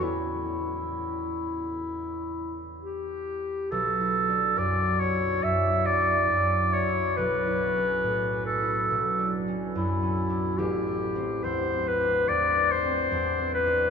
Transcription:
<<
  \new Staff \with { instrumentName = "Clarinet" } { \time 4/4 \key b \minor \tempo 4 = 70 e'2. g'4 | a'4 d''8 cis''8 e''8 d''4 cis''8 | b'4. a'4 r8 e'4 | g'4 c''8 b'8 d''8 c''4 b'8 | }
  \new Staff \with { instrumentName = "Harp" } { \time 4/4 \key b \minor << { <b' cis'' e''>1~ | <b' cis'' e''>1 | r1 | r1 | } \\ { <e, b cis' e' g'>1 | \tuplet 3/2 { b,,8 e'8 d'8 fis,8 d'8 e'8 fis,8 e'8 d'8 fis,8 d'8 e'8 } | \tuplet 3/2 { b,,8 e'8 cis'8 a,8 cis'8 e'8 b,,8 d'8 cis'8 fis,8 cis'8 d'8 } | \tuplet 3/2 { a,,8 d'8 c'8 e,8 c'8 d'8 e,8 d'8 c'8 e,8 c'8 d'8 } | } >> }
>>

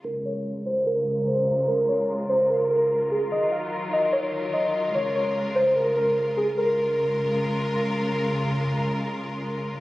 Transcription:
<<
  \new Staff \with { instrumentName = "Synth keys" } { \time 4/4 \key bes \minor \tempo 4 = 147 bes'8 des''8 r8 c''8 bes'4 c''4 | bes'8 des''8 r8 c''8 bes'8 bes'4 aes'8 | ees''8 f''8 r8 ees''8 des''4 ees''4 | des''8 des''8 r8 c''8 bes'8 bes'4 aes'8 |
bes'2. r4 | r1 | }
  \new Staff \with { instrumentName = "String section" } { \clef bass \time 4/4 \key bes \minor << { <f' bes'>1~ | <f' bes'>1~ | <f' bes'>1~ | <f' bes'>1 |
<des aes f' bes'>1~ | <des aes f' bes'>1 | } \\ { <des aes>1~ | <des aes>1 | <ees ges>1 | <des aes>1 |
r1 | r1 | } >> }
>>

